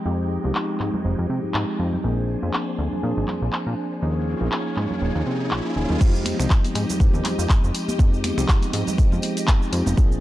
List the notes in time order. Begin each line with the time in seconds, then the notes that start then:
Already playing: G#3 D#4 G5
0.05 F2 F3 G#3 C4 D#4 G4, tambourine
0.31 tambourine
0.43 C2 F3 G#3 C4 D#4 G4, tambourine, high conga
0.55 clap, tambourine
0.80 G#2, clap
0.93 tambourine, low conga
1.04 F1 F3 G#3 C4 D#4 G4, tambourine
1.19 F2
1.29 C3, tambourine
1.43 G#2, tambourine
1.54 G#2, clap
1.79 F2, tambourine
1.93 tambourine, low conga
2.04 A#1 F3 A#3 C4 D4 G#4 C5 G#5, tambourine, riser
2.28 tambourine
2.42 F2 F3 A#3 C4 D4 G#4, tambourine, high conga
2.53 clap, tambourine
2.78 D2, tambourine
2.92 tambourine, low conga
3.02 A#2 F3 A#3 C4 D4 G#4, tambourine
3.17 G#1
3.28 clap, tambourine, low conga
3.42 A#1, tambourine
3.53 clap
3.67 A#2
3.78 tambourine
3.92 tambourine
4.02 D#2 F3 A#3 C#4 D#4 F4 G#4 C#5 G#5, tambourine
4.27 tambourine
4.40 A#1 F3 A#3 C#4 D#4 G#4, tambourine, high conga
4.52 clap, tambourine
4.77 G#2, clap
4.90 tambourine, low conga
5.01 D#1 F3 A#3 C#4 D#4 G#4
5.15 D#2
5.26 C3
5.51 A#1, clap
5.64 F3 A#3 C#4 D#4 G#4
5.76 D#1 F3 A#3 C#4 D#4 G#4
5.90 D#2, tambourine, low conga
6.00 F2 F3 G#3 C4 D#4 G4 D#5, kick, tambourine, crash, shaker
6.15 shaker
6.25 finger snap, open hi-hat, tambourine, high conga
6.39 C2 F3 G#3 C4 D#4 G4, finger snap, tambourine, shaker
6.50 kick, clap, tambourine, shaker
6.64 open hi-hat, high conga, shaker
6.75 G#2, finger snap, open hi-hat, tambourine
6.89 tambourine, low conga, shaker
6.99 F1 F3 G#3 C4 D#4 G4, kick, shaker
7.14 D#2, high conga, shaker
7.25 clap, open hi-hat, tambourine, low conga
7.39 F2, tambourine, shaker
7.49 kick, clap, tambourine, high conga, shaker
7.63 F1, shaker
7.75 open hi-hat, tambourine
7.88 tambourine, high conga, shaker
7.99 F2 F3 G#3 C4 D#4 G4, kick, tambourine, shaker
8.14 shaker
8.24 finger snap, open hi-hat, tambourine, high conga
8.37 C2 F3 G#3 C4 D#4 G4, finger snap, tambourine, shaker
8.48 kick, clap, tambourine, shaker
8.62 open hi-hat, high conga, shaker
8.73 G#2, open hi-hat, tambourine
8.87 tambourine, low conga, shaker
8.97 F1 F3 G#3 C4 D#4 G4, kick, tambourine, shaker
9.12 F2, high conga, shaker
9.22 open hi-hat, tambourine
9.37 open hi-hat, tambourine, shaker
9.48 kick, clap, tambourine, high conga, shaker
9.62 shaker
9.73 F2, open hi-hat, tambourine
9.86 F1, tambourine, high conga, low conga, shaker
9.97 A#1 F3 G#3 A#3 C4 D4 G#4 D5 C6, kick, tambourine, shaker
10.12 shaker